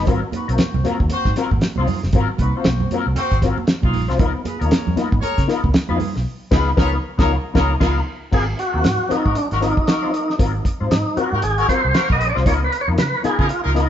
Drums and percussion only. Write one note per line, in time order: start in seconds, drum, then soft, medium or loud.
0.07 kick loud
0.07 closed hi-hat loud
0.07 low conga medium
0.32 closed hi-hat medium
0.32 muted conga soft
0.32 high conga medium
0.49 closed hi-hat medium
0.58 snare loud
0.58 closed hi-hat loud
0.58 high conga medium
0.74 low conga medium
0.85 snare soft
0.85 closed hi-hat medium
0.85 muted conga soft
0.85 high conga medium
1.00 kick medium
1.10 closed hi-hat loud
1.10 muted conga soft
1.10 high conga medium
1.25 kick medium
1.25 snare soft
1.36 snare soft
1.36 closed hi-hat medium
1.36 muted conga soft
1.51 kick medium
1.51 high conga medium
1.61 snare loud
1.61 closed hi-hat medium
1.76 high conga medium
1.87 open hi-hat medium
1.87 muted conga soft
1.87 low conga medium
2.03 snare soft
2.13 kick loud
2.13 closed hi-hat medium
2.13 low conga medium
2.38 kick medium
2.38 closed hi-hat medium
2.38 muted conga soft
2.38 high conga medium
2.64 snare loud
2.64 closed hi-hat loud
2.64 muted conga soft
2.64 high conga medium
2.80 low conga medium
2.91 closed hi-hat medium
2.91 muted conga soft
2.91 high conga medium
3.16 closed hi-hat loud
3.16 muted conga soft
3.16 high conga medium
3.31 kick medium
3.31 closed hi-hat medium
3.42 kick medium
3.42 snare soft
3.42 closed hi-hat medium
3.42 muted conga soft
3.58 high conga medium
3.67 snare loud
3.67 closed hi-hat medium
3.67 muted conga soft
3.82 kick medium
3.82 high conga medium
3.94 open hi-hat medium
3.94 low conga medium
4.10 snare soft
4.19 kick loud
4.19 closed hi-hat medium
4.19 muted conga soft
4.19 low conga medium
4.45 closed hi-hat medium
4.45 muted conga soft
4.45 high conga medium
4.62 closed hi-hat medium
4.71 snare loud
4.71 closed hi-hat loud
4.71 high conga medium
4.87 low conga medium
4.97 snare soft
4.97 closed hi-hat medium
4.97 muted conga soft
4.97 high conga medium
5.12 kick loud
5.22 closed hi-hat loud
5.22 high conga medium
5.38 kick medium
5.38 snare soft
5.38 closed hi-hat medium
5.49 snare soft
5.49 closed hi-hat medium
5.64 kick medium
5.64 high conga medium
5.74 snare loud
5.74 closed hi-hat medium
5.74 muted conga soft
5.89 high conga medium
6.00 open hi-hat medium
6.00 muted conga soft
6.00 low conga medium
6.16 snare soft
6.51 kick loud
6.51 snare loud
6.51 crash medium
6.77 kick loud
6.77 snare loud
7.19 kick loud
7.19 snare loud
7.55 kick loud
7.55 snare loud
7.81 kick loud
7.81 snare loud
7.81 crash medium
8.33 kick loud
8.33 crash medium
8.59 closed hi-hat medium
8.84 snare loud
8.84 closed hi-hat medium
9.11 snare soft
9.11 closed hi-hat medium
9.26 kick medium
9.35 closed hi-hat medium
9.51 snare soft
9.51 closed hi-hat soft
9.62 snare soft
9.62 closed hi-hat medium
9.77 kick medium
9.87 snare loud
9.87 closed hi-hat medium
10.14 closed hi-hat medium
10.30 snare soft
10.39 kick loud
10.39 closed hi-hat loud
10.65 kick medium
10.65 closed hi-hat medium
10.91 snare loud
10.91 closed hi-hat medium
11.17 closed hi-hat medium
11.42 closed hi-hat medium
11.58 closed hi-hat medium
11.69 kick medium
11.69 snare soft
11.69 closed hi-hat medium
11.94 snare loud
11.94 closed hi-hat medium
12.10 kick medium
12.21 closed hi-hat medium
12.37 snare soft
12.46 kick loud
12.46 closed hi-hat medium
12.72 closed hi-hat medium
12.98 snare loud
12.98 closed hi-hat loud
13.24 snare soft
13.24 closed hi-hat medium
13.39 kick loud
13.49 closed hi-hat loud
13.66 snare soft
13.76 snare soft
13.76 closed hi-hat medium